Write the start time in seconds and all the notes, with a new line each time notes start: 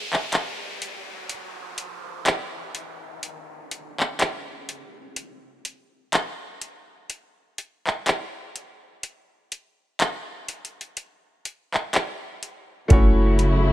Already playing: downlifter
0.13 clap
0.32 clap, closed hi-hat
0.82 closed hi-hat
1.29 closed hi-hat
1.78 closed hi-hat
2.26 clap, closed hi-hat
2.75 closed hi-hat
3.23 closed hi-hat
3.71 closed hi-hat
4.00 clap
4.19 clap, closed hi-hat
4.69 closed hi-hat
5.16 closed hi-hat
5.65 closed hi-hat
6.13 clap, closed hi-hat
6.61 closed hi-hat
7.10 closed hi-hat
7.58 closed hi-hat
7.87 clap
8.06 clap, closed hi-hat
8.56 closed hi-hat
9.03 closed hi-hat
9.52 closed hi-hat
10.00 clap, closed hi-hat
10.48 closed hi-hat
10.65 closed hi-hat
10.81 closed hi-hat
10.97 closed hi-hat
11.45 closed hi-hat
11.74 clap
11.93 clap, closed hi-hat
12.43 closed hi-hat
12.88 F#1 C#3 F#3 A3 C#4 E4 F#4, kick, closed hi-hat
12.93 C#5
13.39 closed hi-hat